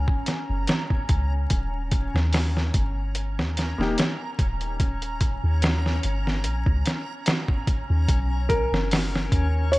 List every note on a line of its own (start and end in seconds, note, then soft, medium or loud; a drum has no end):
0.00 9.79 C#4 medium
0.00 9.79 A#5 medium
0.08 kick medium
0.26 snare soft
0.26 closed hi-hat medium
0.49 0.66 F#1 medium
0.67 snare loud
0.67 closed hi-hat medium
0.90 kick medium
1.09 1.46 C#2 medium
1.09 kick medium
1.09 closed hi-hat medium
1.50 2.10 D#1 medium
1.50 kick medium
1.50 closed hi-hat medium
1.91 kick medium
1.91 closed hi-hat medium
2.14 2.71 D#2 medium
2.14 snare soft
2.33 snare medium
2.33 open hi-hat medium
2.57 snare soft
2.74 3.40 G1 medium
2.74 kick medium
2.74 closed hi-hat medium
3.15 closed hi-hat medium
3.38 3.74 D#2 medium
3.38 snare soft
3.57 snare soft
3.57 closed hi-hat medium
3.78 3.95 D#1 medium
3.78 3.99 A#3 medium
3.78 3.99 D#4 medium
3.78 4.00 G4 medium
3.78 snare soft
3.98 snare loud
3.98 closed hi-hat medium
4.39 5.39 D#1 medium
4.39 kick medium
4.39 closed hi-hat medium
4.61 closed hi-hat soft
4.80 kick medium
4.80 closed hi-hat medium
5.02 closed hi-hat soft
5.21 kick medium
5.21 closed hi-hat medium
5.44 6.00 D#2 medium
5.62 snare loud
5.62 closed hi-hat medium
5.86 snare soft
6.03 6.46 G1 medium
6.03 closed hi-hat medium
6.27 snare soft
6.44 6.64 A#1 loud
6.44 closed hi-hat medium
6.66 6.83 C#2 medium
6.66 kick medium
6.86 snare soft
6.86 closed hi-hat medium
7.26 snare loud
7.26 closed hi-hat medium
7.48 kick medium
7.67 kick medium
7.67 closed hi-hat medium
7.90 8.07 D#2 loud
8.09 8.68 B1 medium
8.09 kick medium
8.09 closed hi-hat medium
8.49 9.69 A#4 medium
8.49 kick medium
8.49 closed hi-hat medium
8.72 9.28 F#1 medium
8.72 snare soft
8.91 snare loud
8.91 open hi-hat medium
9.15 snare soft
9.32 9.79 D#2 medium
9.32 kick medium
9.32 closed hi-hat medium
9.72 9.79 C#5 medium
9.72 closed hi-hat medium